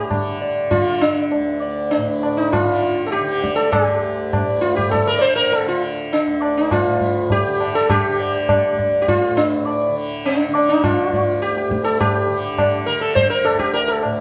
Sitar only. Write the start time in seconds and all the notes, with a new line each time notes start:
Already playing: G4
0.41 D5
0.71 F4
1.01 D4
1.62 D5
1.91 D4
2.23 D5
2.37 D#4
2.52 F4
3.06 A4
3.12 G4
3.43 D5
3.56 A4
3.72 G4
4.33 D5
4.61 F4
4.76 G4
4.91 A4
5.07 A#4
5.19 C5 D5
5.36 A#4
5.52 A4
5.68 F4
6.13 D4
6.42 D5
6.57 D#4
6.72 F4
7.32 G4
7.61 D5
7.75 A4
7.90 G4
8.20 D5
8.49 D5
8.79 D5
9.02 G4
9.08 F4
9.37 D4
9.67 D5
10.26 D4
10.55 D5
10.69 D#4
10.84 F4
11.14 D5
11.42 G4
11.84 A4
12.00 G4
12.59 D5
12.86 A#4
13.01 A4
13.15 C5
13.30 A#4
13.45 A4
13.59 G4
13.73 A#4
13.88 A4